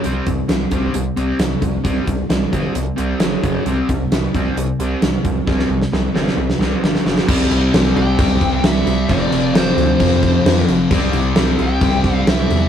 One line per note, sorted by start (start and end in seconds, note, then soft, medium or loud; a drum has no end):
0.04 0.20 C2 loud
0.04 0.26 C3 medium
0.04 0.26 G3 medium
0.04 0.26 C4 medium
0.04 closed hi-hat medium
0.26 0.41 C2 medium
0.26 0.47 C3 medium
0.26 0.48 G3 medium
0.26 kick medium
0.26 closed hi-hat medium
0.49 0.65 C2 medium
0.49 0.70 C3 medium
0.49 0.70 G3 medium
0.49 snare loud
0.49 closed hi-hat medium
0.71 0.87 C2 medium
0.71 0.93 C3 medium
0.71 0.94 G3 medium
0.71 0.94 C4 medium
0.71 kick medium
0.71 closed hi-hat medium
0.94 1.09 C2 medium
0.94 1.15 C3 medium
0.94 1.15 G3 medium
0.94 closed hi-hat medium
1.16 1.32 C2 medium
1.16 1.38 C3 medium
1.16 1.38 G3 medium
1.16 1.39 C4 medium
1.16 closed hi-hat medium
1.39 1.54 C2 medium
1.39 1.60 C3 medium
1.39 1.60 G3 medium
1.39 snare loud
1.39 closed hi-hat medium
1.61 1.77 C2 medium
1.61 1.83 C3 medium
1.61 1.83 G3 medium
1.61 kick medium
1.61 closed hi-hat medium
1.84 1.99 C2 medium
1.84 2.06 C3 medium
1.84 2.06 G3 medium
1.84 2.06 C4 medium
1.84 kick loud
1.84 closed hi-hat medium
2.07 2.22 C2 medium
2.07 2.28 C3 medium
2.07 2.28 G3 medium
2.07 kick medium
2.07 closed hi-hat medium
2.29 2.44 C2 medium
2.29 2.50 C3 medium
2.29 2.51 G3 medium
2.29 snare loud
2.29 closed hi-hat medium
2.52 2.67 G1 medium
2.52 2.74 C3 medium
2.52 2.74 G3 medium
2.52 2.74 C4 medium
2.52 kick medium
2.52 closed hi-hat medium
2.75 2.90 C2 medium
2.75 2.95 C3 medium
2.75 2.96 G3 medium
2.75 closed hi-hat medium
2.96 3.13 C2 medium
2.96 3.19 C3 medium
2.96 3.19 G3 medium
2.96 3.19 C4 loud
2.96 closed hi-hat medium
3.20 3.36 F#1 medium
3.20 3.42 F#2 medium
3.20 3.42 C#3 medium
3.20 3.43 F#3 loud
3.20 snare loud
3.20 closed hi-hat medium
3.43 3.58 F#1 medium
3.43 3.65 F#2 medium
3.43 3.65 C#3 medium
3.43 3.66 F#3 medium
3.43 kick medium
3.43 closed hi-hat medium
3.66 3.81 C2 medium
3.66 3.87 C3 medium
3.66 3.88 G3 medium
3.66 3.88 C4 medium
3.66 closed hi-hat medium
3.89 4.04 C2 medium
3.89 4.10 C3 medium
3.89 4.10 G3 medium
3.89 kick medium
3.89 closed hi-hat medium
4.12 4.26 C2 medium
4.12 4.32 C3 medium
4.12 4.32 G3 medium
4.12 snare medium
4.12 closed hi-hat medium
4.34 4.49 C2 medium
4.34 4.56 C3 medium
4.34 4.56 G3 medium
4.34 4.56 C4 medium
4.34 kick medium
4.34 closed hi-hat medium
4.57 4.72 C2 medium
4.57 4.77 C3 medium
4.57 4.78 G3 medium
4.57 closed hi-hat medium
4.79 4.94 C2 medium
4.79 5.01 C3 medium
4.79 5.01 G3 medium
4.79 5.01 C4 medium
4.79 closed hi-hat medium
5.02 5.16 C2 medium
5.02 5.23 C3 medium
5.02 5.23 G3 medium
5.02 snare loud
5.02 closed hi-hat medium
5.25 5.39 C2 medium
5.25 5.45 C3 medium
5.25 5.46 G3 medium
5.25 kick medium
5.25 closed hi-hat medium
5.47 5.62 C2 loud
5.47 5.69 C3 medium
5.47 5.69 G3 medium
5.47 5.69 C4 medium
5.47 kick loud
5.47 snare medium
5.59 snare medium
5.69 5.84 C2 medium
5.69 5.90 C3 medium
5.69 5.90 G3 medium
5.82 snare medium
5.92 6.07 C2 medium
5.92 6.13 C3 medium
5.92 6.13 G3 medium
5.92 snare medium
6.14 6.30 G1 medium
6.14 6.36 C3 medium
6.14 6.36 G3 medium
6.14 6.37 C4 medium
6.14 snare medium
6.28 snare medium
6.37 6.52 C2 medium
6.37 6.58 C3 medium
6.37 6.58 G3 medium
6.50 snare medium
6.59 6.74 C2 medium
6.59 6.82 C3 medium
6.59 6.82 G3 medium
6.59 6.82 C4 medium
6.59 snare medium
6.83 6.98 G1 medium
6.83 7.05 G2 medium
6.83 7.05 D3 medium
6.83 7.06 G3 medium
6.83 snare medium
6.95 snare medium
7.05 7.20 F#1 medium
7.05 7.27 F#2 medium
7.05 7.27 C#3 medium
7.05 7.28 F#3 medium
7.05 snare medium
7.18 snare medium
7.27 7.47 C2 loud
7.27 9.08 C3 medium
7.27 9.08 G3 loud
7.27 10.80 C4 medium
7.27 kick loud
7.27 crash loud
7.27 crash medium
7.50 7.69 C2 loud
7.50 crash medium
7.74 7.92 C2 loud
7.74 snare loud
7.74 crash medium
7.96 8.15 C2 medium
7.96 8.61 G5 loud
7.96 crash medium
8.18 8.37 C2 loud
8.18 9.08 C3 medium
8.18 9.08 G3 medium
8.18 10.92 C4 medium
8.18 kick loud
8.18 crash medium
8.41 8.60 C2 loud
8.41 kick medium
8.41 crash medium
8.64 8.82 C2 medium
8.64 9.11 E5 loud
8.64 snare loud
8.64 crash medium
8.86 9.05 C2 medium
8.86 crash medium
9.09 9.28 F1 loud
9.09 10.89 F2 medium
9.09 10.90 C3 loud
9.09 10.91 F3 medium
9.09 9.56 D5 loud
9.09 kick loud
9.09 crash medium
9.31 9.50 F1 medium
9.31 crash medium
9.53 9.72 F1 loud
9.53 10.65 C5 medium
9.53 snare loud
9.53 crash medium
9.76 9.95 D2 medium
9.76 crash medium
9.99 10.89 F2 medium
9.99 10.37 F2 loud
9.99 10.90 C3 medium
9.99 10.90 F3 medium
9.99 kick loud
9.99 crash medium
10.23 kick medium
10.23 crash medium
10.45 10.64 F2 medium
10.45 snare loud
10.45 crash medium
10.68 10.86 F1 loud
10.68 crash medium
10.91 11.09 C2 loud
10.91 12.69 C3 medium
10.91 12.69 G3 medium
10.91 12.69 C4 loud
10.91 kick loud
10.91 crash medium
11.13 11.32 C2 loud
11.13 crash medium
11.36 11.56 C2 loud
11.36 snare loud
11.36 crash medium
11.59 11.78 C2 loud
11.59 12.14 G5 loud
11.59 crash medium
11.81 12.00 C2 medium
11.81 12.69 C3 medium
11.81 12.69 G3 medium
11.81 12.69 C4 medium
11.81 kick loud
11.81 crash medium
12.04 12.23 C2 medium
12.04 kick medium
12.04 crash medium
12.14 12.28 F5 loud
12.27 12.45 C2 medium
12.27 12.69 E5 loud
12.27 snare loud
12.27 crash medium
12.50 12.68 E2 loud
12.50 crash medium